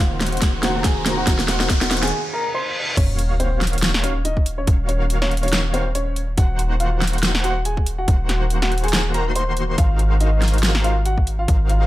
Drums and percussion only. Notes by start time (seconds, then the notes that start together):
0.21 snare, closed hi-hat
0.26 closed hi-hat
0.32 closed hi-hat
0.37 closed hi-hat
0.42 kick, snare, closed hi-hat
0.63 snare, closed hi-hat
0.84 kick, snare, closed hi-hat
1.06 snare, closed hi-hat
1.27 kick, snare, closed hi-hat
1.39 snare
1.48 snare, closed hi-hat
1.60 snare
1.70 kick, snare, closed hi-hat
1.81 snare
1.91 snare, closed hi-hat
1.97 closed hi-hat
2.03 snare, closed hi-hat
2.07 closed hi-hat
2.97 kick, closed hi-hat, crash
3.19 closed hi-hat
3.40 closed hi-hat
3.61 snare, closed hi-hat
3.67 closed hi-hat
3.73 closed hi-hat
3.78 closed hi-hat
3.82 snare, closed hi-hat
3.94 snare
4.04 closed hi-hat
4.25 closed hi-hat
4.37 kick
4.46 closed hi-hat
4.67 kick, closed hi-hat
4.89 closed hi-hat
5.10 closed hi-hat
5.22 snare
5.31 closed hi-hat
5.37 closed hi-hat
5.43 closed hi-hat
5.48 closed hi-hat
5.53 snare, closed hi-hat
5.74 closed hi-hat
5.95 closed hi-hat
6.16 closed hi-hat
6.38 kick, closed hi-hat
6.59 closed hi-hat
6.80 closed hi-hat
7.01 snare, closed hi-hat
7.07 closed hi-hat
7.13 closed hi-hat
7.18 closed hi-hat
7.23 snare, closed hi-hat
7.35 snare
7.44 closed hi-hat
7.65 closed hi-hat
7.77 kick
7.86 closed hi-hat
8.08 kick, closed hi-hat
8.29 snare, closed hi-hat
8.50 closed hi-hat
8.62 snare
8.72 closed hi-hat
8.78 closed hi-hat
8.84 closed hi-hat
8.88 closed hi-hat
8.93 snare, closed hi-hat
9.14 closed hi-hat
9.36 closed hi-hat
9.57 closed hi-hat
9.78 kick, closed hi-hat
9.99 closed hi-hat
10.20 closed hi-hat
10.42 snare, closed hi-hat
10.48 closed hi-hat
10.54 closed hi-hat
10.58 closed hi-hat
10.63 snare, closed hi-hat
10.75 snare
10.84 closed hi-hat
11.06 closed hi-hat
11.18 kick
11.27 closed hi-hat
11.48 kick, closed hi-hat
11.69 closed hi-hat